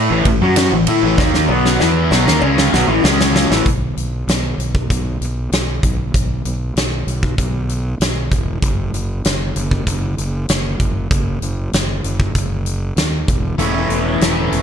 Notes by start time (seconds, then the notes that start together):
Already playing: A4
0.11 A1 A2 E3
0.25 A1 A2 E3, kick, ride
0.42 F#2 F#3 C#4 F#4
0.56 snare, ride, cowbell
0.72 A1 A2 E3
0.87 A2 A3 E4, ride
1.03 A1 A2 E3
1.18 D#2 D#3 A#3 D#4, kick, snare, cowbell
1.34 snare
1.49 B1 B2 F#3 B3, cowbell
1.66 snare
1.80 E2 E3 B3 E4, snare, cowbell
2.11 B1 B2 F#3, snare, cowbell
2.27 D#2 D#3 A#3, snare
2.42 C#2 C#3 G#3 C#4, cowbell
2.58 snare
2.73 B1 B2 F#3, snare
2.88 A1 A2 E3
3.04 C#2 C#3 G#3 C#4, snare, cowbell
3.21 snare
3.36 snare
3.50 A1 A2 E3, snare
3.66 B1, kick, closed hi-hat
3.97 B1, closed hi-hat
4.27 B1, snare, closed hi-hat
4.58 B1, closed hi-hat
4.75 kick
4.90 B1, kick, closed hi-hat
5.21 B1, closed hi-hat
5.52 B1, snare, closed hi-hat
5.83 B1, kick, closed hi-hat
6.14 B1, kick, closed hi-hat
6.45 B1, closed hi-hat
6.76 B1, snare, closed hi-hat
7.07 B1, closed hi-hat
7.23 kick
7.38 B1, kick, closed hi-hat
7.69 closed hi-hat
8.00 B1, snare, closed hi-hat
8.31 E1, kick, closed hi-hat
8.62 F#1, kick, closed hi-hat
8.93 F#1, closed hi-hat
9.25 F#1, snare, closed hi-hat
9.56 F#1, closed hi-hat
9.71 kick
9.87 F#1, kick, closed hi-hat
10.18 F#1, closed hi-hat
10.49 F#1, snare, closed hi-hat
10.80 F#1, kick, closed hi-hat
11.11 F#1, kick, closed hi-hat
11.42 F#1, closed hi-hat
11.73 F#1, snare, closed hi-hat
12.04 F#1, closed hi-hat
12.20 kick
12.35 F#1, kick, closed hi-hat
12.66 closed hi-hat
12.97 D#2, snare, closed hi-hat
13.28 E1, kick, closed hi-hat
13.58 E1 E3 A3 C#4 E4, closed hi-hat
13.89 E1, closed hi-hat
14.21 E1, snare, closed hi-hat
14.52 E1, closed hi-hat